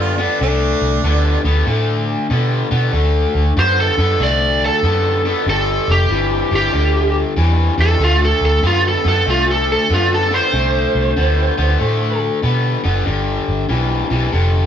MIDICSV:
0, 0, Header, 1, 5, 480
1, 0, Start_track
1, 0, Tempo, 632911
1, 306, Time_signature, 4, 2, 24, 8
1, 11120, End_track
2, 0, Start_track
2, 0, Title_t, "Lead electric guitar"
2, 0, Program_c, 0, 29
2, 0, Note_on_c, 0, 74, 83
2, 1718, Note_off_c, 0, 74, 0
2, 2731, Note_on_c, 0, 72, 78
2, 2874, Note_off_c, 0, 72, 0
2, 2887, Note_on_c, 0, 69, 79
2, 3188, Note_off_c, 0, 69, 0
2, 3209, Note_on_c, 0, 74, 81
2, 3509, Note_off_c, 0, 74, 0
2, 3532, Note_on_c, 0, 69, 68
2, 4141, Note_off_c, 0, 69, 0
2, 4170, Note_on_c, 0, 69, 75
2, 4470, Note_off_c, 0, 69, 0
2, 4487, Note_on_c, 0, 67, 76
2, 4943, Note_off_c, 0, 67, 0
2, 4975, Note_on_c, 0, 67, 84
2, 5427, Note_off_c, 0, 67, 0
2, 5928, Note_on_c, 0, 69, 96
2, 6074, Note_off_c, 0, 69, 0
2, 6096, Note_on_c, 0, 65, 75
2, 6238, Note_off_c, 0, 65, 0
2, 6257, Note_on_c, 0, 69, 76
2, 6398, Note_off_c, 0, 69, 0
2, 6412, Note_on_c, 0, 69, 90
2, 6556, Note_off_c, 0, 69, 0
2, 6573, Note_on_c, 0, 65, 85
2, 6717, Note_off_c, 0, 65, 0
2, 6735, Note_on_c, 0, 69, 70
2, 6877, Note_off_c, 0, 69, 0
2, 6892, Note_on_c, 0, 69, 78
2, 7036, Note_off_c, 0, 69, 0
2, 7052, Note_on_c, 0, 65, 87
2, 7196, Note_off_c, 0, 65, 0
2, 7213, Note_on_c, 0, 69, 76
2, 7356, Note_off_c, 0, 69, 0
2, 7376, Note_on_c, 0, 69, 85
2, 7518, Note_off_c, 0, 69, 0
2, 7540, Note_on_c, 0, 65, 80
2, 7680, Note_off_c, 0, 65, 0
2, 7692, Note_on_c, 0, 69, 83
2, 7836, Note_off_c, 0, 69, 0
2, 7852, Note_on_c, 0, 72, 83
2, 9249, Note_off_c, 0, 72, 0
2, 11120, End_track
3, 0, Start_track
3, 0, Title_t, "Harmonica"
3, 0, Program_c, 1, 22
3, 6, Note_on_c, 1, 65, 82
3, 164, Note_on_c, 1, 62, 81
3, 176, Note_off_c, 1, 65, 0
3, 310, Note_off_c, 1, 62, 0
3, 324, Note_on_c, 1, 62, 101
3, 1246, Note_off_c, 1, 62, 0
3, 11120, End_track
4, 0, Start_track
4, 0, Title_t, "Overdriven electric guitar"
4, 0, Program_c, 2, 29
4, 0, Note_on_c, 2, 50, 77
4, 0, Note_on_c, 2, 59, 86
4, 106, Note_off_c, 2, 50, 0
4, 108, Note_off_c, 2, 59, 0
4, 137, Note_on_c, 2, 50, 70
4, 141, Note_on_c, 2, 59, 75
4, 288, Note_off_c, 2, 50, 0
4, 290, Note_off_c, 2, 59, 0
4, 309, Note_on_c, 2, 50, 75
4, 314, Note_on_c, 2, 57, 86
4, 754, Note_off_c, 2, 50, 0
4, 756, Note_off_c, 2, 57, 0
4, 787, Note_on_c, 2, 50, 79
4, 791, Note_on_c, 2, 59, 80
4, 1067, Note_off_c, 2, 50, 0
4, 1069, Note_off_c, 2, 59, 0
4, 1096, Note_on_c, 2, 50, 68
4, 1101, Note_on_c, 2, 59, 79
4, 1248, Note_off_c, 2, 50, 0
4, 1250, Note_off_c, 2, 59, 0
4, 1264, Note_on_c, 2, 50, 72
4, 1267, Note_on_c, 2, 57, 82
4, 1711, Note_off_c, 2, 50, 0
4, 1713, Note_off_c, 2, 57, 0
4, 1745, Note_on_c, 2, 50, 73
4, 1748, Note_on_c, 2, 59, 80
4, 2026, Note_off_c, 2, 50, 0
4, 2028, Note_off_c, 2, 59, 0
4, 2055, Note_on_c, 2, 50, 70
4, 2057, Note_on_c, 2, 59, 75
4, 2207, Note_off_c, 2, 50, 0
4, 2209, Note_off_c, 2, 59, 0
4, 2222, Note_on_c, 2, 50, 82
4, 2225, Note_on_c, 2, 57, 94
4, 2671, Note_off_c, 2, 50, 0
4, 2672, Note_off_c, 2, 57, 0
4, 2706, Note_on_c, 2, 50, 78
4, 2710, Note_on_c, 2, 59, 89
4, 2987, Note_off_c, 2, 50, 0
4, 2989, Note_off_c, 2, 59, 0
4, 3018, Note_on_c, 2, 50, 75
4, 3022, Note_on_c, 2, 59, 76
4, 3170, Note_off_c, 2, 50, 0
4, 3171, Note_off_c, 2, 59, 0
4, 3184, Note_on_c, 2, 50, 73
4, 3188, Note_on_c, 2, 57, 81
4, 3632, Note_off_c, 2, 50, 0
4, 3634, Note_off_c, 2, 57, 0
4, 3666, Note_on_c, 2, 50, 70
4, 3669, Note_on_c, 2, 59, 83
4, 3948, Note_off_c, 2, 50, 0
4, 3949, Note_off_c, 2, 59, 0
4, 3982, Note_on_c, 2, 50, 67
4, 3986, Note_on_c, 2, 59, 77
4, 4132, Note_off_c, 2, 50, 0
4, 4134, Note_off_c, 2, 59, 0
4, 4151, Note_on_c, 2, 43, 84
4, 4154, Note_on_c, 2, 50, 82
4, 4596, Note_off_c, 2, 43, 0
4, 4597, Note_off_c, 2, 50, 0
4, 4627, Note_on_c, 2, 43, 78
4, 4631, Note_on_c, 2, 52, 89
4, 4908, Note_off_c, 2, 43, 0
4, 4910, Note_off_c, 2, 52, 0
4, 4939, Note_on_c, 2, 43, 77
4, 4942, Note_on_c, 2, 52, 77
4, 5090, Note_off_c, 2, 43, 0
4, 5092, Note_off_c, 2, 52, 0
4, 5104, Note_on_c, 2, 43, 72
4, 5109, Note_on_c, 2, 50, 83
4, 5553, Note_off_c, 2, 43, 0
4, 5555, Note_off_c, 2, 50, 0
4, 5585, Note_on_c, 2, 43, 74
4, 5588, Note_on_c, 2, 52, 77
4, 5867, Note_off_c, 2, 43, 0
4, 5869, Note_off_c, 2, 52, 0
4, 5898, Note_on_c, 2, 43, 75
4, 5901, Note_on_c, 2, 52, 83
4, 6050, Note_off_c, 2, 43, 0
4, 6052, Note_off_c, 2, 52, 0
4, 6065, Note_on_c, 2, 50, 80
4, 6069, Note_on_c, 2, 57, 86
4, 6513, Note_off_c, 2, 50, 0
4, 6515, Note_off_c, 2, 57, 0
4, 6542, Note_on_c, 2, 50, 76
4, 6547, Note_on_c, 2, 59, 103
4, 6826, Note_off_c, 2, 50, 0
4, 6829, Note_off_c, 2, 59, 0
4, 6858, Note_on_c, 2, 50, 77
4, 6861, Note_on_c, 2, 59, 90
4, 7011, Note_off_c, 2, 50, 0
4, 7012, Note_off_c, 2, 59, 0
4, 7025, Note_on_c, 2, 50, 79
4, 7029, Note_on_c, 2, 57, 81
4, 7473, Note_off_c, 2, 50, 0
4, 7475, Note_off_c, 2, 57, 0
4, 7505, Note_on_c, 2, 50, 78
4, 7507, Note_on_c, 2, 59, 87
4, 7787, Note_off_c, 2, 50, 0
4, 7788, Note_off_c, 2, 59, 0
4, 7818, Note_on_c, 2, 50, 70
4, 7822, Note_on_c, 2, 59, 73
4, 7970, Note_off_c, 2, 50, 0
4, 7972, Note_off_c, 2, 59, 0
4, 7987, Note_on_c, 2, 50, 83
4, 7991, Note_on_c, 2, 57, 81
4, 8434, Note_off_c, 2, 50, 0
4, 8436, Note_off_c, 2, 57, 0
4, 8467, Note_on_c, 2, 50, 83
4, 8472, Note_on_c, 2, 59, 91
4, 8748, Note_off_c, 2, 50, 0
4, 8751, Note_off_c, 2, 59, 0
4, 8779, Note_on_c, 2, 50, 65
4, 8782, Note_on_c, 2, 59, 82
4, 8930, Note_off_c, 2, 50, 0
4, 8932, Note_off_c, 2, 59, 0
4, 8946, Note_on_c, 2, 50, 72
4, 8949, Note_on_c, 2, 57, 84
4, 9393, Note_off_c, 2, 50, 0
4, 9394, Note_off_c, 2, 57, 0
4, 9423, Note_on_c, 2, 50, 65
4, 9428, Note_on_c, 2, 59, 77
4, 9706, Note_off_c, 2, 50, 0
4, 9708, Note_off_c, 2, 59, 0
4, 9736, Note_on_c, 2, 50, 63
4, 9741, Note_on_c, 2, 59, 80
4, 9888, Note_off_c, 2, 50, 0
4, 9891, Note_off_c, 2, 59, 0
4, 9900, Note_on_c, 2, 43, 81
4, 9906, Note_on_c, 2, 50, 81
4, 10349, Note_off_c, 2, 43, 0
4, 10352, Note_off_c, 2, 50, 0
4, 10380, Note_on_c, 2, 43, 85
4, 10387, Note_on_c, 2, 52, 85
4, 10663, Note_off_c, 2, 43, 0
4, 10667, Note_off_c, 2, 52, 0
4, 10694, Note_on_c, 2, 43, 74
4, 10698, Note_on_c, 2, 52, 86
4, 10846, Note_off_c, 2, 43, 0
4, 10848, Note_off_c, 2, 52, 0
4, 10861, Note_on_c, 2, 43, 77
4, 10865, Note_on_c, 2, 50, 90
4, 11120, Note_off_c, 2, 43, 0
4, 11120, Note_off_c, 2, 50, 0
4, 11120, End_track
5, 0, Start_track
5, 0, Title_t, "Fingered electric bass"
5, 0, Program_c, 3, 33
5, 0, Note_on_c, 3, 42, 88
5, 193, Note_off_c, 3, 42, 0
5, 312, Note_on_c, 3, 36, 86
5, 548, Note_off_c, 3, 36, 0
5, 618, Note_on_c, 3, 36, 78
5, 746, Note_off_c, 3, 36, 0
5, 789, Note_on_c, 3, 38, 89
5, 1026, Note_off_c, 3, 38, 0
5, 1096, Note_on_c, 3, 38, 79
5, 1225, Note_off_c, 3, 38, 0
5, 1266, Note_on_c, 3, 45, 84
5, 1633, Note_off_c, 3, 45, 0
5, 1750, Note_on_c, 3, 47, 86
5, 1987, Note_off_c, 3, 47, 0
5, 2060, Note_on_c, 3, 47, 81
5, 2188, Note_off_c, 3, 47, 0
5, 2221, Note_on_c, 3, 38, 79
5, 2462, Note_off_c, 3, 38, 0
5, 2538, Note_on_c, 3, 38, 72
5, 2666, Note_off_c, 3, 38, 0
5, 2706, Note_on_c, 3, 42, 82
5, 2945, Note_off_c, 3, 42, 0
5, 3017, Note_on_c, 3, 42, 88
5, 3146, Note_off_c, 3, 42, 0
5, 3185, Note_on_c, 3, 36, 75
5, 3553, Note_off_c, 3, 36, 0
5, 3663, Note_on_c, 3, 42, 84
5, 4032, Note_off_c, 3, 42, 0
5, 4143, Note_on_c, 3, 31, 86
5, 4383, Note_off_c, 3, 31, 0
5, 4457, Note_on_c, 3, 29, 82
5, 4586, Note_off_c, 3, 29, 0
5, 4629, Note_on_c, 3, 31, 89
5, 4867, Note_off_c, 3, 31, 0
5, 4940, Note_on_c, 3, 31, 79
5, 5068, Note_off_c, 3, 31, 0
5, 5111, Note_on_c, 3, 38, 84
5, 5477, Note_off_c, 3, 38, 0
5, 5588, Note_on_c, 3, 40, 82
5, 5827, Note_off_c, 3, 40, 0
5, 5898, Note_on_c, 3, 40, 80
5, 6028, Note_off_c, 3, 40, 0
5, 6064, Note_on_c, 3, 38, 91
5, 6304, Note_off_c, 3, 38, 0
5, 6379, Note_on_c, 3, 38, 79
5, 6508, Note_off_c, 3, 38, 0
5, 6544, Note_on_c, 3, 42, 92
5, 6785, Note_off_c, 3, 42, 0
5, 6863, Note_on_c, 3, 42, 82
5, 6990, Note_off_c, 3, 42, 0
5, 7028, Note_on_c, 3, 36, 80
5, 7395, Note_off_c, 3, 36, 0
5, 7510, Note_on_c, 3, 42, 80
5, 7877, Note_off_c, 3, 42, 0
5, 7989, Note_on_c, 3, 36, 86
5, 8228, Note_off_c, 3, 36, 0
5, 8305, Note_on_c, 3, 36, 82
5, 8431, Note_off_c, 3, 36, 0
5, 8474, Note_on_c, 3, 38, 87
5, 8710, Note_off_c, 3, 38, 0
5, 8787, Note_on_c, 3, 38, 83
5, 8912, Note_off_c, 3, 38, 0
5, 8956, Note_on_c, 3, 45, 87
5, 9320, Note_off_c, 3, 45, 0
5, 9430, Note_on_c, 3, 47, 92
5, 9667, Note_off_c, 3, 47, 0
5, 9744, Note_on_c, 3, 30, 87
5, 9870, Note_off_c, 3, 30, 0
5, 9911, Note_on_c, 3, 31, 84
5, 10148, Note_off_c, 3, 31, 0
5, 10224, Note_on_c, 3, 31, 75
5, 10350, Note_off_c, 3, 31, 0
5, 10393, Note_on_c, 3, 35, 88
5, 10629, Note_off_c, 3, 35, 0
5, 10701, Note_on_c, 3, 35, 77
5, 10828, Note_off_c, 3, 35, 0
5, 10870, Note_on_c, 3, 29, 79
5, 11120, Note_off_c, 3, 29, 0
5, 11120, End_track
0, 0, End_of_file